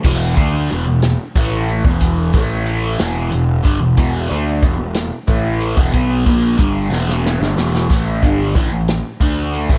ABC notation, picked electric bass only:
X:1
M:6/8
L:1/16
Q:3/8=61
K:A
V:1 name="Picked electric bass" clef=bass
E,,,2 D,,2 E,,, E,,,2 z A,,,3 E,,,- | E,,,2 A,,,4 E,,,2 E,,,2 =G,,, E,,, | E,,,2 D,,2 E,,, E,,,2 z A,,,3 E,,, | B,,,2 ^A,,,2 =G,,,2 E,,,3 G,,, E,,,2 |
A,,,2 =G,,,2 A,,, A,,,2 z D,,3 A,,, |]